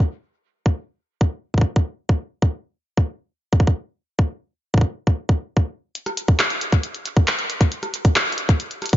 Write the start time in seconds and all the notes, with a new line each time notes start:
0.66 kick
1.21 kick
1.54 kick
1.58 kick
1.61 kick
1.76 kick
2.09 kick
2.42 kick
2.97 kick
3.53 kick
3.60 kick
3.67 kick
4.19 kick
4.74 kick
4.78 kick
4.81 kick
5.07 kick
5.29 kick
5.57 kick
5.95 closed hi-hat
6.06 cross-stick, closed hi-hat
6.17 closed hi-hat
6.28 kick
6.39 cross-stick, clap, closed hi-hat
6.50 closed hi-hat
6.61 closed hi-hat
6.72 kick, closed hi-hat
6.83 closed hi-hat
6.95 closed hi-hat
7.06 closed hi-hat
7.17 kick
7.28 clap, closed hi-hat
7.39 closed hi-hat
7.50 closed hi-hat
7.61 kick, closed hi-hat
7.72 closed hi-hat
7.83 cross-stick, closed hi-hat
7.94 closed hi-hat
8.05 kick, closed hi-hat
8.16 cross-stick, clap, closed hi-hat
8.32 closed hi-hat
8.38 closed hi-hat
8.49 kick, closed hi-hat
8.60 closed hi-hat
8.71 closed hi-hat
8.82 cross-stick, closed hi-hat
8.86 closed hi-hat
8.89 closed hi-hat
8.93 kick, closed hi-hat